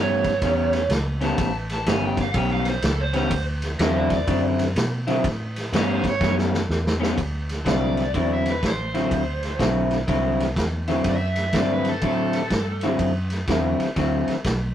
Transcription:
Already playing: G2 A2 G3 B3 C#4
0.00 C#5
0.24 kick, snare, ride
0.42 E2 A2 G3 B3 C#4, kick, snare, ride
0.73 snare, ride
0.89 C#2, snare, ride
1.21 A2 G3 B3 C#4, snare, ride
1.25 A5
1.38 A1, kick, snare, ride
1.69 A5, snare, ride
1.86 G1 A2 G3 B3 C#4 G#5, snare, ride
2.05 G5
2.17 F5, kick, snare, ride
2.34 B1 A2 G3 B3 C#4 G5, kick, ride
2.53 F5
2.65 C5, snare, ride
2.82 C#2 A4, snare, ride
3.01 C5
3.13 A2 G3 B3 C#4 C5, snare, ride
3.31 D2, kick, ride
3.62 snare, ride
3.79 E2 D3 F#3 C4 E4 C5 F5, snare, ride
3.97 A4 D5
4.10 D5, kick, snare, ride
4.27 F#2 D3 F#3 C4 E4, kick, ride
4.59 snare, ride
4.76 B2, snare, ride
5.07 D3 F#3 C4 E4, snare, ride
5.24 A2, kick, snare, ride
5.56 snare, ride
5.72 G2 A2 G3 B3 C#4 C#5 F5, snare, ride
5.91 G4 C5
6.04 C#5, kick, snare, ride
6.20 F#2 A2 G3 B3 C#4, kick, snare
6.38 snare
6.54 snare
6.69 E2, snare
6.87 snare
7.00 A2 G3 B3 C#4, snare
7.18 D2, kick, ride
7.49 snare, ride
7.65 C2 D3 F#3 C4 E4 D5, kick, snare, ride
7.97 snare, ride
8.14 E2 D3 F#3 C4 E4, kick, ride
8.34 E5
8.46 snare, ride
8.50 B4
8.63 A1 C5, kick, snare, ride
8.94 D3 F#3 C4 E4, snare, ride
9.11 D2, kick, ride
9.43 snare, ride
9.59 B1 D3 F#3 C4 E4, kick, snare, ride
9.91 snare, ride
10.08 C2 D3 F#3 C4 E4, kick, snare, ride
10.40 snare, ride
10.56 E2, kick, snare, ride
10.87 D3 F#3 C4 E4, snare, ride
11.04 F#2, kick, snare, ride
11.09 E5
11.36 snare, ride
11.53 G2 D3 F#3 C4 E4, kick, snare, ride
11.58 D5
11.73 B4
11.85 snare, ride
11.89 A4
12.01 A2 D3 F#3 C4 E4, kick, ride
12.06 A4
12.33 snare, ride
12.50 G2, kick, snare, ride
12.81 D3 F#3 C4 E4, snare, ride
12.99 F#2, kick, ride
13.30 snare, ride
13.48 E2 D3 F#3 C4 E4, kick, snare, ride
13.79 muted fingered electric bass stroke, snare, ride
13.96 D2 D3 F#3 C4 E4, kick, snare, ride
14.27 muted fingered electric bass stroke, snare, ride
14.44 B1, kick, snare, ride

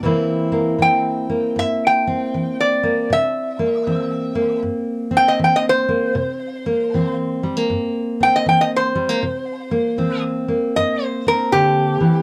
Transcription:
0.03 C3 E3 A#3 C4 E4
0.52 A#3
0.79 E3 C4 G5
1.30 A#3
1.56 G2 E5
1.87 G5
2.07 C4
2.34 E3
2.60 D5
2.83 A#3
3.10 C3 E5
3.59 A#3
3.87 E3 C4
4.35 A#3
4.63 G2
5.11 C4
5.17 G5
5.28 D#5
5.39 E3
5.44 G5
5.56 D#5
5.69 C5
5.89 A#3
6.15 C3
6.66 A#3
6.94 E3 C4
7.43 G3
7.57 A#3
7.70 G2
8.20 C4 G5
8.36 D#5
8.46 E3 G5
8.61 D#5
8.76 C5
8.95 G3
9.09 A#3
9.23 C3
9.71 A#3
9.98 E3 C4
10.48 A#3
10.76 G2 D#5
11.03 C5
11.27 C4 A#4
11.52 D3 G4
12.00 E3

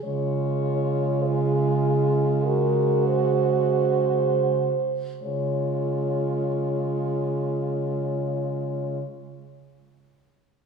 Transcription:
0.04 C#3 G#3 F4 C#5
1.23 G#4
2.44 F#4 A#4
3.07 C5
5.22 C#3 G#3 F4 C#5

